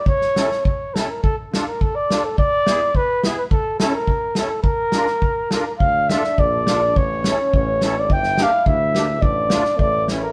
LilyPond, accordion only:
\new Staff \with { instrumentName = "Accordion" } { \time 2/4 \key d \minor \tempo 4 = 105 r8 <cis' e' a'>8 r8 <cis' e' a'>8 | r8 <d' f' a'>8 r8 <d' f' a'>8 | r8 <b e' gis'>8 r8 <b e' gis'>8 | r8 <cis' e' a'>8 r8 <cis' e' a'>8 |
r8 <d' f' bes'>8 r8 <d' f' bes'>8 | r8 <d' f' a'>8 r8 <d' f' a'>8 | r8 <cis' e' a'>8 r8 <cis' e' a'>8 | r8 <bes d' g'>8 r8 <bes d' g'>8 |
r8 <a d' f'>8 r8 <a cis' e'>8 | }